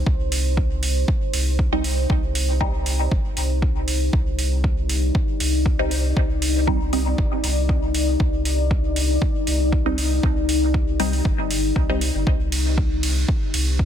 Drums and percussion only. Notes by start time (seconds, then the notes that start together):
0.06 kick
0.32 open hi-hat
0.57 kick
0.83 open hi-hat
1.08 kick
1.34 open hi-hat
1.59 kick
1.84 open hi-hat
2.10 kick
2.35 open hi-hat
2.61 kick
2.86 open hi-hat
3.11 kick
3.37 open hi-hat
3.62 kick
3.88 open hi-hat
4.13 kick
4.39 open hi-hat
4.64 kick
4.89 open hi-hat
5.15 kick
5.40 open hi-hat
5.66 kick
5.91 open hi-hat
6.17 kick
6.42 open hi-hat
6.67 kick
6.93 open hi-hat
7.18 kick
7.44 open hi-hat
7.69 kick
7.95 open hi-hat
8.20 kick
8.45 open hi-hat
8.71 kick
8.96 open hi-hat
9.22 kick
9.47 open hi-hat
9.72 kick
9.98 open hi-hat
10.23 kick
10.49 open hi-hat
10.74 kick
11.00 open hi-hat
11.13 open hi-hat
11.25 kick
11.51 open hi-hat
11.76 kick
12.01 open hi-hat
12.27 kick
12.52 open hi-hat, ride
12.78 kick
13.03 open hi-hat, ride
13.28 kick
13.54 open hi-hat, ride
13.79 kick